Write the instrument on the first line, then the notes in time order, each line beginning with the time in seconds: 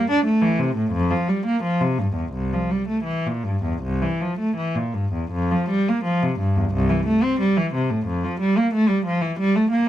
cello
0.10 D4
0.25 A3
0.42 E3
0.59 C3
0.76 A2
0.92 F2
1.10 F3
1.28 G3
1.46 A#3
1.63 F3
1.80 C3
1.99 G2
2.14 E2
2.33 C2
2.53 F3
2.70 G3
2.88 A3
3.04 E3
3.26 A#2
3.44 G2
3.64 E2
3.83 C2
4.02 E3
4.21 F3
4.39 A3
4.57 E3
4.76 A#2
4.94 G2
5.13 E2
5.31 F2
5.51 F3
5.70 G3
5.89 A#3
6.04 F3
6.23 C3
6.39 G2
6.56 E2
6.73 C2
6.90 E3
7.06 A3
7.23 C4
7.40 G3
7.57 E3
7.74 C3
7.90 A2
8.06 F2
8.24 F3
8.40 G3
8.57 A#3
8.74 A3
8.88 G3
9.06 F3
9.21 E3
9.39 G3
9.55 A3
9.71 A#3